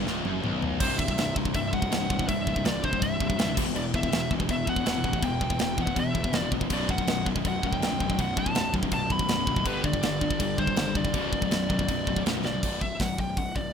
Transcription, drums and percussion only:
0.07 snare medium
0.25 high tom medium
0.44 mid tom medium
0.62 floor tom medium
0.80 kick loud
0.80 crash loud
0.80 crash medium
0.99 kick medium
1.08 kick medium
1.18 snare loud
1.18 crash medium
1.36 kick medium
1.45 kick medium
1.54 kick loud
1.54 crash medium
1.73 kick medium
1.82 kick medium
1.92 snare loud
1.92 crash medium
2.10 kick medium
2.19 kick medium
2.29 kick loud
2.29 crash medium
2.47 kick medium
2.56 kick medium
2.65 snare loud
2.65 crash medium
2.84 kick medium
2.93 kick medium
3.02 kick loud
3.02 crash medium
3.20 kick medium
3.30 kick medium
3.39 snare loud
3.39 crash medium
3.57 kick loud
3.57 crash loud
3.76 crash medium
3.94 kick medium
4.03 kick medium
4.12 snare loud
4.12 crash medium
4.31 kick medium
4.40 kick medium
4.49 kick loud
4.49 crash medium
4.67 kick medium
4.76 kick medium
4.86 snare loud
4.86 crash medium
5.04 kick medium
5.13 kick medium
5.23 kick loud
5.23 crash medium
5.41 kick medium
5.50 kick medium
5.59 snare loud
5.59 crash medium
5.78 kick medium
5.87 kick medium
5.96 kick loud
5.96 crash medium
6.15 kick medium
6.24 kick medium
6.33 snare loud
6.33 crash medium
6.52 kick medium
6.61 kick medium
6.70 kick loud
6.70 crash medium
6.89 kick medium
6.98 kick medium
7.07 snare loud
7.07 crash medium
7.26 kick medium
7.36 kick medium
7.45 kick loud
7.45 crash medium
7.63 kick medium
7.73 kick medium
7.82 snare loud
7.82 crash medium
8.00 kick medium
8.10 kick medium
8.19 kick loud
8.19 crash medium
8.37 kick loud
8.46 kick medium
8.55 snare loud
8.55 crash medium
8.74 kick medium
8.83 kick loud
8.91 kick loud
8.91 crash medium
9.10 kick medium
9.19 kick loud
9.28 snare loud
9.28 crash medium
9.47 kick medium
9.56 kick medium
9.65 kick loud
9.65 crash medium
9.84 kick medium
9.93 kick medium
10.03 snare loud
10.03 crash medium
10.21 kick medium
10.30 kick medium
10.40 kick loud
10.40 crash medium
10.58 kick medium
10.67 kick medium
10.76 snare loud
10.76 crash medium
10.95 kick medium
11.05 kick medium
11.14 kick loud
11.14 crash medium
11.33 kick medium
11.42 kick medium
11.51 snare loud
11.51 crash medium
11.70 kick medium
11.79 kick medium
11.89 kick loud
11.89 crash medium
12.07 kick medium
12.16 kick medium
12.26 snare loud
12.26 crash medium
12.45 snare medium
12.63 kick medium
12.63 crash medium
12.81 kick medium
13.00 kick loud
13.00 snare loud
13.00 open hi-hat soft
13.18 kick medium
13.37 kick loud
13.37 open hi-hat soft
13.56 kick medium

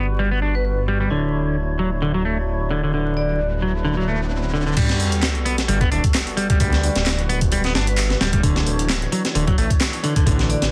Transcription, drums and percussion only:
4.77 kick loud
4.77 closed hi-hat medium
4.77 crash medium
4.89 snare medium
4.89 closed hi-hat soft
5.00 closed hi-hat medium
5.12 closed hi-hat medium
5.22 snare loud
5.22 clap loud
5.22 closed hi-hat medium
5.35 closed hi-hat soft
5.46 closed hi-hat medium
5.58 snare soft
5.58 closed hi-hat medium
5.69 closed hi-hat medium
5.81 kick medium
5.81 closed hi-hat soft
5.92 closed hi-hat medium
6.04 kick loud
6.04 closed hi-hat medium
6.14 snare loud
6.14 clap loud
6.14 closed hi-hat medium
6.27 closed hi-hat soft
6.37 closed hi-hat medium
6.50 kick loud
6.50 closed hi-hat medium
6.60 kick loud
6.60 closed hi-hat medium
6.73 snare soft
6.73 closed hi-hat soft
6.83 closed hi-hat medium
6.95 snare medium
6.95 closed hi-hat medium
7.06 snare loud
7.06 clap loud
7.06 closed hi-hat medium
7.18 closed hi-hat soft
7.30 closed hi-hat medium
7.41 kick medium
7.41 closed hi-hat medium
7.52 closed hi-hat medium
7.64 snare soft
7.64 closed hi-hat soft
7.75 snare loud
7.75 closed hi-hat medium
7.87 closed hi-hat medium
7.98 clap loud
7.98 closed hi-hat medium
8.10 snare soft
8.10 closed hi-hat soft
8.21 snare loud
8.21 closed hi-hat medium
8.33 kick loud
8.33 closed hi-hat medium
8.43 kick loud
8.43 closed hi-hat medium
8.56 snare medium
8.56 closed hi-hat soft
8.66 closed hi-hat medium
8.79 closed hi-hat medium
8.89 snare loud
8.89 clap loud
8.89 closed hi-hat medium
9.02 closed hi-hat soft
9.12 closed hi-hat medium
9.25 snare soft
9.25 closed hi-hat medium
9.35 closed hi-hat medium
9.48 kick loud
9.48 closed hi-hat soft
9.58 closed hi-hat medium
9.70 kick loud
9.70 closed hi-hat medium
9.81 snare loud
9.81 clap loud
9.81 closed hi-hat medium
9.93 closed hi-hat soft
10.04 closed hi-hat medium
10.16 kick loud
10.16 closed hi-hat medium
10.27 kick loud
10.27 closed hi-hat medium
10.39 snare soft
10.39 closed hi-hat soft
10.50 closed hi-hat medium
10.62 snare medium
10.62 closed hi-hat medium

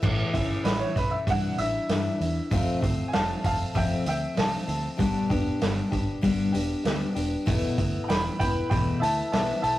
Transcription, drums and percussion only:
0.03 kick loud
0.03 crash medium
0.34 kick medium
0.34 open hi-hat soft
0.65 snare loud
0.65 open hi-hat medium
0.96 kick medium
0.96 open hi-hat soft
1.27 kick medium
1.27 open hi-hat medium
1.58 open hi-hat medium
1.89 snare loud
1.89 open hi-hat medium
2.21 open hi-hat soft
2.51 kick loud
2.51 open hi-hat medium
2.82 kick medium
2.82 open hi-hat medium
3.13 snare loud
3.13 open hi-hat medium
3.44 kick medium
3.44 open hi-hat medium
3.75 kick loud
3.75 open hi-hat medium
4.06 open hi-hat medium
4.37 snare loud
4.37 open hi-hat medium
4.69 open hi-hat medium
4.99 kick loud
4.99 open hi-hat medium
5.30 kick medium
5.30 open hi-hat medium
5.62 snare loud
5.62 open hi-hat medium
5.92 kick medium
5.92 open hi-hat soft
6.23 kick medium
6.23 open hi-hat medium
6.55 open hi-hat medium
6.85 snare medium
6.85 open hi-hat medium
7.16 open hi-hat soft
7.47 kick loud
7.47 open hi-hat medium
7.78 kick medium
7.78 open hi-hat medium
8.10 snare medium
8.10 open hi-hat medium
8.40 kick medium
8.40 open hi-hat medium
8.71 kick loud
8.71 open hi-hat medium
9.03 open hi-hat medium
9.33 snare medium
9.33 open hi-hat medium
9.64 open hi-hat soft

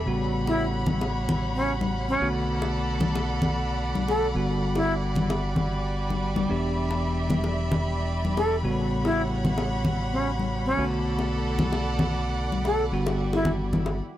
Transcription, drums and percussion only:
0.47 high bongo soft
0.86 high conga medium
0.86 low conga medium
1.01 high bongo medium
1.29 low conga medium
1.81 high conga medium
2.62 high bongo soft
3.00 high conga medium
3.00 low conga medium
3.15 high bongo medium
3.42 low conga medium
3.95 high conga medium
4.08 high bongo soft
4.75 high bongo soft
5.16 high conga medium
5.16 low conga medium
5.30 high bongo medium
5.56 low conga medium
6.10 high conga medium
6.36 high conga medium
6.91 high bongo soft
7.30 high conga medium
7.30 low conga medium
7.44 high bongo soft
7.72 low conga medium
8.25 high conga medium
8.37 high bongo soft
9.05 high bongo medium
9.45 high conga medium
9.45 low conga medium
9.58 high bongo medium
9.85 low conga medium
10.39 high conga medium
11.19 high bongo soft
11.59 high conga medium
11.59 low conga medium
11.72 high bongo medium
11.99 low conga medium
12.52 high conga medium
12.65 high bongo soft
13.07 high bongo medium
13.33 high bongo soft
13.45 low conga medium
13.73 high conga medium
13.73 low conga medium
13.86 high bongo medium

